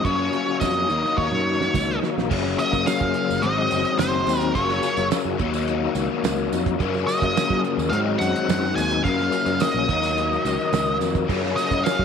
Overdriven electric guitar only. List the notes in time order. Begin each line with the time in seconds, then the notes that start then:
0.04 F#2 C#3 F#3 A#3 C#4
0.89 D#3 F#3 A#3 D#4
2.30 F#2 C#3 F#3 A#3 C#4
3.42 G#2 D#3 F#3 C4 D#4
4.55 F#2 C#3 F#3 A#3 C#4
5.38 D#3 F#3 A#3 D#4
6.79 F#2 C#3 F#3 A#3 C#4
7.92 G#2 D#3 F#3 C4 D#4
9.04 F#2 C#3 F#3 A#3 C#4
9.89 D#3 F#3 A#3 D#4
11.28 F#2 C#3 F#3 A#3 C#4